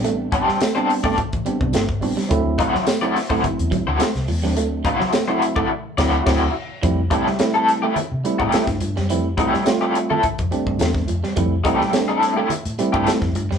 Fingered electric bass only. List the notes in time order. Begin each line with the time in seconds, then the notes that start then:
0.04 A1
0.48 muted fingered electric bass stroke
1.33 A1
1.61 C2
1.74 G1
2.02 A1
2.31 D2
2.74 muted fingered electric bass stroke
3.60 E2
3.87 D2
4.15 C2
4.29 E2
4.44 D#2
4.57 D2
5.01 muted fingered electric bass stroke
5.98 D2
6.27 D2
6.83 F2
7.27 muted fingered electric bass stroke
8.12 C3
8.40 A2
8.67 G2
8.82 G2
8.98 F#2
9.11 F2
9.54 muted fingered electric bass stroke
10.39 F2
10.67 G2
10.81 E2
11.09 F2
11.37 F2
11.81 muted fingered electric bass stroke
12.66 A2
12.94 G2
13.22 F2
13.36 G2
13.51 F#2